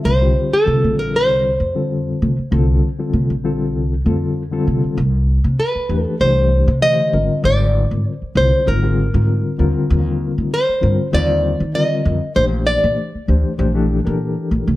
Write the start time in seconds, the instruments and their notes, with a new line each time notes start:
Already playing: reed electric piano D3 G3 C4 F4 A4
0.05 upright bass C2, nylon-string guitar C5
0.21 reed electric piano D3 G3 C4 F4 G4
0.53 nylon-string guitar A4
0.66 upright bass C3, reed electric piano D3 G3 C4 F4 A4
0.84 upright bass A#1
0.99 nylon-string guitar A#4
1.16 nylon-string guitar C5
1.29 upright bass C2
1.60 upright bass F2
1.75 reed electric piano D3 G3 C4 F4 A4
2.22 upright bass C3
2.39 muted upright bass stroke
2.51 upright bass C2, reed electric piano D3 G3 C4 F4 A4
2.98 reed electric piano D3 G3 C4 F4 A4
3.13 upright bass C3, nylon-string guitar A#4
3.30 upright bass A#1
3.44 reed electric piano D3 G3 C4 F4 A4
3.75 upright bass C2
4.05 upright bass F2, reed electric piano D3 G3 C4 F4 A4
4.51 reed electric piano D3 G3 C4 F4 A4
4.67 upright bass C3
4.84 muted upright bass stroke
4.97 upright bass C2
5.44 upright bass C3
5.60 nylon-string guitar B4
5.75 muted upright bass stroke
5.89 upright bass E2, reed electric piano E3 A3 D4 G4 B4
6.04 nylon-string guitar A4
6.20 upright bass C2, reed electric piano E3 A3 D4 G4 C5, nylon-string guitar C5
6.68 upright bass C3
6.82 reed electric piano D3 E3 A3 G4 C5, nylon-string guitar D#5
7.12 upright bass G#1, reed electric piano D3 G3 C4 F4 A#4
7.44 upright bass G#1, nylon-string guitar D5
7.91 upright bass G#2
8.12 nylon-string guitar C5
8.22 muted upright bass stroke
8.35 upright bass C2, reed electric piano D3 G3 C4 F4 C5, nylon-string guitar C5
8.66 upright bass G#1, reed electric piano D3 G3 C4 F4 A#4, nylon-string guitar A#4
8.82 reed electric piano D3 G3 C4 F4 G#4
9.13 upright bass G#2, reed electric piano D3 G3 C4 F4 A#4
9.58 upright bass D#2, reed electric piano D3 G3 C4 F4 A#4
9.90 upright bass D#2
10.38 upright bass D#3
10.54 nylon-string guitar C5
10.69 muted upright bass stroke
10.81 upright bass G2, reed electric piano D3 G3 C4 F4 A#4
11.12 upright bass D#2, reed electric piano D3 G3 C4 F4 C5, nylon-string guitar D5
11.60 upright bass D#3
11.74 reed electric piano D3 G3 C4 F4 A#4, nylon-string guitar D#5
12.05 upright bass F2
12.35 upright bass A#1, reed electric piano E3 A3 D4 G4 C5, nylon-string guitar C5
12.67 nylon-string guitar D5
12.84 upright bass A#2
13.15 muted upright bass stroke
13.27 upright bass D2, reed electric piano E3 A3 D4 G4 C5
13.57 upright bass A#1, reed electric piano E3 A3 D4 G4 C5
13.74 reed electric piano E3 A3 D4 G4 A4
14.04 upright bass A#2, reed electric piano E3 D4 G4 A4 A#4
14.51 upright bass A#1
14.68 upright bass C2